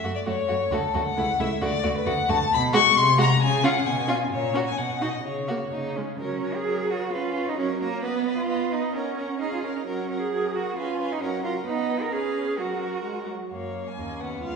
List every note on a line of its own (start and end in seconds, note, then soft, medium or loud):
0.00 0.12 F#4 medium
0.00 0.14 E5 medium
0.04 0.12 F#2 medium
0.04 0.12 A3 medium
0.15 0.20 D5 medium
0.26 0.34 F#2 medium
0.26 0.34 A3 medium
0.26 0.34 F#4 medium
0.26 0.75 C#5 medium
0.48 0.57 F#2 medium
0.48 0.58 A3 medium
0.48 0.56 F#4 medium
0.72 0.80 D2 medium
0.72 0.81 A3 medium
0.72 0.80 F#4 medium
0.72 1.06 A4 medium
0.94 1.03 D2 medium
0.94 1.03 A3 medium
0.94 1.02 F#4 medium
1.07 1.42 F#5 medium
1.17 1.25 C#2 medium
1.17 1.25 A3 medium
1.17 1.26 E4 medium
1.39 1.47 C#2 medium
1.39 1.48 A3 medium
1.39 1.48 E4 medium
1.39 1.63 E5 medium
1.61 1.70 D2 medium
1.61 1.69 A3 medium
1.61 1.70 F#4 medium
1.61 1.96 D5 loud
1.83 1.93 D2 medium
1.83 1.92 A3 medium
1.83 1.91 F#4 medium
1.97 2.08 B4 medium
2.06 2.14 D2 medium
2.06 2.15 A3 medium
2.06 2.14 F#4 medium
2.06 2.31 F#5 loud
2.29 2.37 D2 medium
2.29 2.37 A3 medium
2.29 2.37 F#4 medium
2.29 2.52 A5 loud
2.51 2.89 B2 medium
2.51 2.61 B5 loud
2.73 2.84 G#3 medium
2.73 2.84 F#4 medium
2.73 2.99 C#6 loud
2.95 3.33 C3 medium
2.95 3.19 C6 loud
3.18 3.29 G#3 medium
3.18 3.29 F#4 medium
3.18 3.41 A#5 loud
3.40 3.78 C#3 medium
3.40 3.66 G#5 loud
3.63 3.74 C#4 medium
3.63 3.74 F4 medium
3.63 3.88 F#5 loud
3.85 4.24 B2 medium
3.85 4.09 G#5 loud
4.07 4.19 C#4 medium
4.07 4.19 F4 medium
4.31 4.70 A#2 medium
4.31 4.64 C#5 medium
4.53 4.65 C#4 medium
4.53 4.66 F#4 medium
4.67 4.79 G#5 medium
4.77 5.17 B2 medium
4.77 5.04 F#5 medium
5.01 5.13 D#4 medium
5.01 5.13 F#4 medium
5.01 5.25 D#5 medium
5.25 5.65 C#3 medium
5.25 5.72 C#5 medium
5.48 5.61 A#3 medium
5.48 5.60 F#4 medium
5.72 6.13 C#3 medium
5.72 5.98 D#4 medium
5.96 6.08 G#3 medium
5.96 6.19 C#4 medium
6.20 6.62 F#3 medium
6.20 6.57 C#4 medium
6.20 6.42 A#4 medium
6.20 6.43 C#5 soft
6.43 6.65 A#4 soft
6.43 6.65 C#5 soft
6.55 6.92 G#4 medium
6.66 7.07 F#3 medium
6.66 6.88 A#4 soft
6.66 6.89 C#5 soft
6.89 7.14 F#4 medium
6.89 7.12 A#4 soft
6.89 7.12 C#5 soft
7.12 7.53 C#4 medium
7.12 7.50 F4 medium
7.12 7.33 B4 medium
7.12 7.35 C#5 medium
7.34 7.57 B4 soft
7.34 7.58 C#5 soft
7.48 7.59 D#4 medium
7.58 7.98 F#3 medium
7.58 7.67 C#4 medium
7.58 7.80 A#4 medium
7.58 7.80 C#5 medium
7.80 8.05 A#3 medium
7.80 8.02 A#4 medium
7.80 8.02 C#5 medium
8.03 8.37 B3 medium
8.03 8.43 B3 medium
8.03 8.25 B4 medium
8.03 8.25 D#5 medium
8.25 8.48 B4 medium
8.25 8.48 D#5 medium
8.38 8.74 F4 medium
8.48 8.88 B3 medium
8.48 8.69 B4 medium
8.48 8.70 D#5 medium
8.70 8.96 D#4 medium
8.70 8.93 B4 soft
8.70 8.93 D#5 soft
8.94 9.34 C#4 medium
8.94 9.40 C#4 medium
8.94 9.16 A#4 medium
8.94 9.17 F#5 soft
9.17 9.39 A#4 soft
9.17 9.40 F#5 soft
9.39 9.80 C#4 soft
9.39 9.51 D#4 medium
9.39 9.65 G#4 medium
9.39 9.62 F5 soft
9.53 9.63 F4 medium
9.63 9.78 C#4 soft
9.63 9.86 A#4 soft
9.63 9.86 F5 soft
9.76 9.87 D#4 medium
9.87 10.26 F#3 medium
9.87 10.20 C#4 medium
9.87 10.09 A#4 soft
9.87 10.09 F#5 soft
10.10 10.32 A#4 soft
10.10 10.32 F#5 soft
10.21 10.57 G#4 medium
10.31 10.72 F#3 medium
10.31 10.54 A#4 soft
10.31 10.54 F#5 soft
10.55 10.77 F#4 medium
10.55 10.77 A#4 soft
10.55 10.77 F#5 soft
10.76 11.16 C#4 medium
10.76 11.14 F4 medium
10.76 11.00 B4 soft
10.76 10.99 G#5 soft
11.00 11.21 B4 soft
11.00 11.22 G#5 soft
11.12 11.24 D#4 medium
11.21 11.61 F#3 medium
11.21 11.44 C#4 medium
11.21 11.43 A#4 medium
11.21 11.44 F#5 soft
11.44 11.52 F4 medium
11.44 11.66 A#4 soft
11.44 11.66 F#5 soft
11.67 12.09 B3 medium
11.67 12.03 D#4 medium
11.67 12.08 B4 medium
11.67 12.09 F#5 medium
12.01 12.14 A#4 medium
12.12 12.60 C#4 medium
12.12 12.60 G#4 medium
12.12 12.59 B4 medium
12.12 12.57 F5 medium
12.57 13.00 F#3 soft
12.57 13.28 F#4 medium
12.57 13.31 A#4 soft
12.57 13.30 F#5 soft
13.04 13.27 G#3 medium
13.26 13.50 F#3 soft
13.52 13.99 F#2 soft
13.52 13.94 A#3 soft
13.52 13.89 C#5 medium
13.88 14.22 G#5 medium
13.96 14.42 D#2 soft
13.96 14.21 A#3 soft
13.96 14.38 C#4 soft
14.20 14.56 B3 soft
14.20 14.42 F#5 medium
14.42 14.56 C#2 soft
14.42 14.56 F4 medium
14.42 14.56 F5 medium